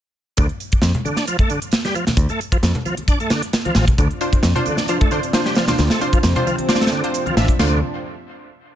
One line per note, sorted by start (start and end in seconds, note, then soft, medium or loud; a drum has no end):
0.37 0.46 D2 medium
0.37 0.46 D3 medium
0.37 kick loud
0.37 closed hi-hat medium
0.37 closed hi-hat soft
0.49 closed hi-hat soft
0.60 closed hi-hat medium
0.72 kick medium
0.72 closed hi-hat medium
0.82 0.91 F2 loud
0.82 snare loud
0.82 closed hi-hat soft
0.82 closed hi-hat medium
0.94 closed hi-hat soft
0.94 low conga medium
1.05 1.16 D3 medium
1.05 closed hi-hat medium
1.05 high conga medium
1.17 1.25 D4 medium
1.17 snare soft
1.17 closed hi-hat medium
1.27 1.37 F3 medium
1.27 closed hi-hat medium
1.27 closed hi-hat soft
1.39 1.50 A3 medium
1.39 kick medium
1.39 closed hi-hat soft
1.50 1.59 D3 medium
1.50 closed hi-hat medium
1.62 closed hi-hat soft
1.62 closed hi-hat medium
1.72 snare loud
1.72 closed hi-hat medium
1.72 closed hi-hat soft
1.85 1.94 G3 loud
1.85 snare soft
1.85 closed hi-hat soft
1.95 2.05 F3 medium
1.95 closed hi-hat medium
2.07 snare medium
2.07 closed hi-hat medium
2.07 high conga medium
2.07 low conga medium
2.17 2.26 D2 medium
2.17 kick loud
2.17 closed hi-hat medium
2.29 2.40 A3 medium
2.29 closed hi-hat soft
2.41 closed hi-hat medium
2.52 2.57 F3 loud
2.52 muted picked electric bass stroke soft
2.52 kick medium
2.52 closed hi-hat medium
2.63 2.71 F2 loud
2.63 snare loud
2.63 closed hi-hat medium
2.75 closed hi-hat soft
2.75 low conga medium
2.86 2.95 F3 medium
2.86 closed hi-hat medium
2.86 high conga medium
2.97 closed hi-hat medium
2.97 high conga medium
3.08 3.19 D4 medium
3.08 kick loud
3.08 closed hi-hat medium
3.20 3.30 A3 medium
3.20 closed hi-hat soft
3.30 3.42 D3 medium
3.30 snare loud
3.30 closed hi-hat medium
3.42 closed hi-hat medium
3.53 snare loud
3.53 closed hi-hat soft
3.53 closed hi-hat medium
3.65 3.75 F3 medium
3.65 closed hi-hat soft
3.65 high conga medium
3.75 3.84 A1 loud
3.75 3.85 F3 medium
3.75 snare loud
3.75 closed hi-hat medium
3.88 kick medium
3.88 closed hi-hat medium
3.88 low conga medium
3.98 4.07 D2 medium
3.98 7.56 C3 medium
3.98 4.08 D3 medium
3.98 7.56 F3 medium
3.98 5.77 D4 medium
3.98 kick loud
3.98 closed hi-hat medium
3.98 closed hi-hat soft
4.11 closed hi-hat soft
4.21 4.53 D4 medium
4.21 4.53 F4 medium
4.21 4.52 C5 medium
4.21 closed hi-hat medium
4.33 kick medium
4.33 closed hi-hat medium
4.43 4.52 F2 loud
4.43 snare loud
4.43 closed hi-hat medium
4.55 4.65 D4 medium
4.55 4.65 F4 medium
4.55 4.65 C5 loud
4.55 closed hi-hat soft
4.55 low conga medium
4.66 4.77 D3 medium
4.66 closed hi-hat medium
4.66 high conga medium
4.77 4.86 D4 medium
4.77 snare soft
4.77 closed hi-hat medium
4.88 4.98 F3 medium
4.88 4.99 D4 medium
4.88 4.99 F4 medium
4.88 4.99 C5 medium
4.88 closed hi-hat medium
5.01 5.11 A3 medium
5.01 kick medium
5.01 closed hi-hat soft
5.11 5.20 D3 medium
5.11 5.21 D4 medium
5.11 5.22 F4 medium
5.11 5.22 C5 medium
5.11 closed hi-hat medium
5.23 closed hi-hat medium
5.23 closed hi-hat soft
5.33 5.50 D4 medium
5.33 5.50 F4 medium
5.33 5.50 C5 loud
5.33 snare loud
5.33 closed hi-hat medium
5.45 5.55 G3 loud
5.45 snare soft
5.45 closed hi-hat soft
5.55 5.65 F3 medium
5.55 snare loud
5.55 closed hi-hat medium
5.67 5.77 D4 medium
5.67 5.77 F4 medium
5.67 5.77 C5 loud
5.67 snare medium
5.67 closed hi-hat medium
5.67 high conga medium
5.67 low conga medium
5.78 5.87 D2 loud
5.78 7.58 C4 medium
5.78 snare loud
5.78 closed hi-hat medium
5.78 closed hi-hat soft
5.90 6.01 A3 medium
5.90 snare loud
5.90 closed hi-hat soft
5.90 closed hi-hat medium
6.01 6.33 D4 medium
6.01 6.33 F4 medium
6.01 6.33 C5 loud
6.01 closed hi-hat medium
6.13 6.18 F3 loud
6.13 muted picked electric bass stroke soft
6.13 kick loud
6.13 closed hi-hat medium
6.23 6.32 F2 loud
6.23 snare loud
6.23 closed hi-hat medium
6.23 closed hi-hat soft
6.36 6.45 D4 medium
6.36 6.45 F4 medium
6.36 6.45 C5 loud
6.36 closed hi-hat soft
6.36 low conga medium
6.47 6.56 F3 medium
6.47 closed hi-hat medium
6.47 high conga medium
6.58 closed hi-hat medium
6.58 high conga medium
6.69 6.80 D4 medium
6.69 6.79 D4 medium
6.69 6.79 F4 medium
6.69 6.79 C5 medium
6.69 snare medium
6.69 closed hi-hat medium
6.69 closed hi-hat soft
6.75 snare medium
6.75 closed hi-hat medium
6.81 6.91 A3 medium
6.81 snare medium
6.81 closed hi-hat soft
6.81 closed hi-hat medium
6.87 snare medium
6.87 closed hi-hat medium
6.92 7.03 D3 medium
6.92 closed hi-hat medium
7.04 7.34 D4 medium
7.04 7.34 F4 medium
7.04 7.34 C5 medium
7.04 closed hi-hat medium
7.14 closed hi-hat medium
7.14 closed hi-hat soft
7.26 7.36 F3 medium
7.26 closed hi-hat soft
7.26 high conga medium
7.37 7.45 A1 loud
7.37 7.46 F3 medium
7.37 7.53 D4 loud
7.37 7.53 F4 medium
7.37 7.53 E5 loud
7.37 snare loud
7.37 closed hi-hat medium
7.48 kick medium
7.48 closed hi-hat medium
7.48 low conga medium
7.59 7.80 D2 medium
7.59 7.80 C3 medium
7.59 7.80 D3 medium
7.59 7.80 F3 medium
7.59 7.80 D4 medium
7.59 7.76 D4 medium
7.59 7.77 F4 medium
7.59 7.76 C5 medium
7.59 snare loud
7.59 crash medium